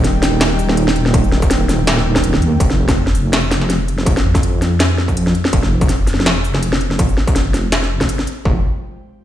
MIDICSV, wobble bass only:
0, 0, Header, 1, 2, 480
1, 0, Start_track
1, 0, Tempo, 365854
1, 1492, Time_signature, 4, 2, 24, 8
1, 12128, End_track
2, 0, Start_track
2, 0, Title_t, "Wobble bass"
2, 0, Program_c, 0, 39
2, 0, Note_on_c, 0, 27, 101
2, 276, Note_off_c, 0, 27, 0
2, 292, Note_on_c, 0, 27, 99
2, 1715, Note_off_c, 0, 27, 0
2, 1727, Note_on_c, 0, 27, 102
2, 3152, Note_off_c, 0, 27, 0
2, 3166, Note_on_c, 0, 39, 97
2, 3392, Note_off_c, 0, 39, 0
2, 3412, Note_on_c, 0, 29, 98
2, 4115, Note_off_c, 0, 29, 0
2, 4126, Note_on_c, 0, 29, 98
2, 5552, Note_off_c, 0, 29, 0
2, 5569, Note_on_c, 0, 41, 102
2, 6993, Note_off_c, 0, 41, 0
2, 7254, Note_on_c, 0, 29, 102
2, 7956, Note_off_c, 0, 29, 0
2, 7972, Note_on_c, 0, 29, 99
2, 9395, Note_off_c, 0, 29, 0
2, 9649, Note_on_c, 0, 29, 98
2, 10593, Note_off_c, 0, 29, 0
2, 11090, Note_on_c, 0, 29, 98
2, 11314, Note_off_c, 0, 29, 0
2, 12128, End_track
0, 0, End_of_file